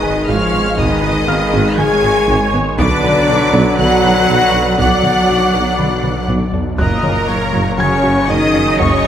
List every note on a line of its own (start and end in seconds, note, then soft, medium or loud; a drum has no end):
0.00 2.80 G#1 medium
0.00 0.13 G#1 medium
0.00 0.12 G#1 medium
0.00 0.29 D#3 medium
0.00 2.75 D#3 medium
0.00 2.75 G#3 medium
0.00 0.28 D#4 medium
0.00 0.18 G#4 medium
0.00 0.29 B4 medium
0.00 0.29 D#5 medium
0.00 0.75 C#6 medium
0.00 0.28 D#6 medium
0.00 sub drop medium
0.28 0.38 G#1 medium
0.28 0.37 G#1 medium
0.28 0.78 F3 medium
0.28 0.43 G#3 medium
0.28 0.79 F4 medium
0.28 0.79 C#5 medium
0.28 0.79 F5 medium
0.28 0.77 F6 loud
0.52 0.63 G#1 medium
0.52 0.62 G#1 medium
0.52 0.68 B3 medium
0.77 0.88 G#1 medium
0.77 0.87 G#1 medium
0.77 1.77 D#3 medium
0.77 0.93 G#3 loud
0.77 1.76 D#4 medium
0.77 1.28 B4 medium
0.77 1.76 D#5 loud
0.77 1.79 D#6 medium
0.77 taiko loud
1.02 1.13 G#1 medium
1.02 1.12 G#1 medium
1.02 1.18 D#4 medium
1.02 taiko mid medium
1.27 1.37 G#1 medium
1.27 1.43 B3 medium
1.27 1.78 B4 medium
1.27 2.74 F5 medium
1.27 2.75 F6 medium
1.52 1.63 G#1 loud
1.52 1.62 G#1 loud
1.52 1.69 G#3 loud
1.78 1.88 G#1 medium
1.78 1.87 G#1 medium
1.78 2.54 G#3 medium
1.78 1.94 G#4 medium
1.78 2.53 G#4 loud
1.78 2.79 C#5 medium
1.78 2.52 G#5 loud
1.78 2.53 G#6 loud
1.78 taiko mid medium
2.03 2.13 G#1 medium
2.03 2.12 G#1 medium
2.03 2.19 G#4 medium
2.27 2.38 G#1 loud
2.27 2.37 G#1 loud
2.27 2.44 G#3 loud
2.53 2.63 G#1 medium
2.53 2.61 G#1 medium
2.53 2.69 B3 medium
2.78 2.88 B1 loud
2.78 2.87 B1 loud
2.78 6.80 B1 loud
2.78 3.74 D3 loud
2.78 6.50 D3 loud
2.78 6.54 F#3 loud
2.78 2.94 B3 loud
2.78 3.74 D4 loud
2.78 3.27 B4 loud
2.78 3.75 D5 loud
2.78 3.75 D6 loud
2.78 taiko loud
3.03 3.11 B1 medium
3.03 3.14 B1 medium
3.03 3.19 F#4 medium
3.03 taiko mid medium
3.27 3.35 B1 loud
3.27 3.38 B1 medium
3.27 3.44 D4 medium
3.27 4.76 B4 loud
3.53 3.61 B1 loud
3.53 3.64 B1 loud
3.53 3.69 B3 loud
3.78 3.86 B1 medium
3.78 3.89 B1 medium
3.78 4.76 F#3 loud
3.78 4.77 F#4 loud
3.78 3.94 B4 medium
3.78 4.77 F#5 loud
3.78 4.78 F#6 loud
3.78 taiko mid medium
4.03 4.11 B1 medium
4.03 4.14 B1 medium
4.03 4.19 B4 medium
4.29 4.39 B1 loud
4.29 4.37 B1 loud
4.29 4.44 B3 medium
4.53 4.61 B1 medium
4.53 4.64 B1 medium
4.53 4.69 D4 medium
4.78 4.86 B1 loud
4.78 4.89 B1 loud
4.78 6.26 F#3 loud
4.78 4.93 B3 loud
4.78 6.26 F#4 medium
4.78 6.50 D5 loud
4.78 6.25 F#5 loud
4.78 6.26 F#6 loud
4.78 taiko loud
5.03 5.11 B1 medium
5.03 5.14 B1 medium
5.03 5.19 F#4 medium
5.03 taiko mid medium
5.29 5.37 B1 medium
5.29 5.39 B1 medium
5.29 5.44 D4 medium
5.54 5.62 B1 medium
5.54 5.64 B1 medium
5.54 5.69 B3 loud
5.78 5.86 B1 soft
5.78 5.89 B1 medium
5.78 5.93 B4 medium
5.78 taiko mid medium
6.03 6.12 B1 medium
6.03 6.14 B1 medium
6.03 6.19 B4 medium
6.03 taiko mid medium
6.28 6.36 B1 medium
6.28 6.39 B1 medium
6.28 6.44 B3 medium
6.28 taiko low-mid medium
6.53 6.61 B1 medium
6.53 6.64 B1 medium
6.53 6.69 D4 medium
6.53 taiko low medium
6.78 9.07 F#1 medium
6.78 6.89 F#1 medium
6.78 6.86 F#2 medium
6.78 7.74 A#2 medium
6.78 9.07 C#3 medium
6.78 6.94 F#3 loud
6.78 9.07 F#3 medium
6.78 7.74 A#3 medium
6.78 7.75 A#4 loud
6.78 7.25 D#5 medium
6.78 7.75 A#5 loud
6.78 8.25 F#6 medium
6.78 taiko loud
7.03 7.14 F#1 medium
7.03 7.12 F#2 medium
7.03 7.19 C#4 medium
7.03 taiko mid medium
7.27 7.39 F#1 medium
7.27 7.36 F#2 medium
7.27 7.44 A#3 medium
7.27 7.78 C#5 medium
7.52 7.64 F#1 medium
7.52 7.60 F#2 medium
7.52 7.68 F#3 loud
7.77 7.89 F#1 medium
7.77 7.86 F#2 medium
7.77 8.28 C#3 medium
7.77 8.29 C#4 medium
7.77 7.93 F#4 medium
7.77 8.27 A#4 medium
7.77 8.27 C#5 medium
7.77 9.07 G#5 medium
7.77 8.29 C#6 loud
7.77 9.07 G#6 medium
7.77 taiko mid medium
8.03 8.14 F#1 medium
8.03 8.11 F#2 medium
8.03 8.18 F#4 medium
8.28 8.39 F#1 medium
8.28 8.36 F#2 medium
8.28 8.78 D#3 medium
8.28 8.43 F#3 loud
8.28 8.79 D#4 loud
8.28 9.07 D#5 loud
8.28 8.79 D#5 medium
8.28 8.79 D#6 loud
8.54 8.64 F#1 medium
8.54 8.62 F#2 medium
8.54 8.69 A#3 medium
8.78 8.89 F#1 loud
8.78 8.87 F#2 loud
8.78 9.07 C#3 medium
8.78 8.94 F#3 loud
8.78 9.07 C#4 loud
8.78 9.07 C#5 loud
8.78 9.07 C#6 loud
8.78 taiko loud
9.04 9.07 F#2 medium
9.04 9.07 C#4 medium
9.04 taiko mid medium